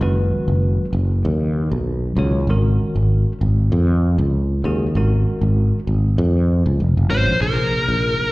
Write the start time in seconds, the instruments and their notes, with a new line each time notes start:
0.01 fretless electric bass F#1, tine electric piano D#3 G#3 C#4 F#4 B4
0.48 fretless electric bass F#1
0.93 fretless electric bass F#1
1.25 fretless electric bass D#2
1.72 fretless electric bass B1
2.17 fretless electric bass C#2, tine electric piano D#3 G#3 C#4 F#4 C#5
2.47 fretless electric bass G#1, tine electric piano D#3 G#3 C#4 F#4 A#4
2.96 fretless electric bass G#1
3.41 fretless electric bass G#1
3.72 fretless electric bass F2
4.18 fretless electric bass C#2
4.64 fretless electric bass D#2, tine electric piano D#3 G#3 C#4 F#4 G#4
4.95 fretless electric bass G#1, tine electric piano D#3 G#3 C#4 F#4 A#4
5.41 fretless electric bass G#1
5.87 fretless electric bass G#1
6.18 fretless electric bass F2
6.66 fretless electric bass C#2
6.80 fretless electric bass F1
6.97 fretless electric bass F#1
7.10 fretless electric bass G#1, tine electric piano D#3 G#3 C#4 F#4 C#5, lead electric guitar C5
7.27 fretless electric bass A#1
7.41 fretless electric bass A#1, tine electric piano C3 F3 A#3 D#4 G#4, lead electric guitar A#4
7.72 muted fretless electric bass stroke
7.89 fretless electric bass A#1
8.19 muted fretless electric bass stroke